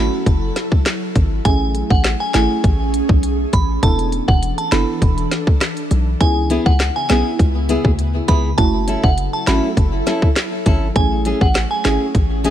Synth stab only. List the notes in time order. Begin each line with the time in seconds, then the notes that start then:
Already playing: A3 C#4 E4 F#4
1.45 A3 C#4 E4 G#4
2.34 A3 C#4 E4 G#4
3.82 B3 D4 E4 A4
4.72 B3 D4 E4 A4
6.20 B3 C#4 E4 G#4
7.09 B3 C#4 E4 G#4
8.58 A3 C#4 E4 F#4
9.47 A3 C#4 E4 F#4
10.96 A3 C#4 E4 G#4
11.85 A3 C#4 E4 G#4